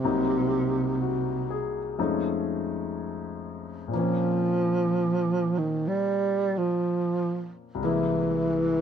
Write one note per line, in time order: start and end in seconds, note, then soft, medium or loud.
0.00 1.98 C2 soft
0.00 1.68 C3 medium
0.00 1.98 C3 soft
0.05 1.98 F#3 soft
0.05 1.98 A#3 soft
0.05 1.98 D#4 soft
1.02 1.79 F#4 soft
1.50 2.19 G#4 soft
1.99 3.93 F2 soft
1.99 3.89 F3 soft
1.99 3.93 G#3 soft
1.99 3.93 A3 soft
1.99 3.93 C#4 soft
1.99 3.93 D#4 soft
3.88 7.78 A#2 soft
3.88 7.79 F3 soft
3.93 5.60 F3 medium
3.93 7.80 A#3 soft
3.93 7.82 C4 soft
3.99 7.83 C#4 soft
5.58 5.89 D#3 medium
5.88 6.59 G3 medium
6.58 7.52 F3 medium
7.75 8.81 C2 soft
7.75 8.81 C3 soft
7.80 8.81 E3 medium
7.80 8.81 G#3 soft
7.80 8.81 A#3 soft
7.86 8.81 E4 soft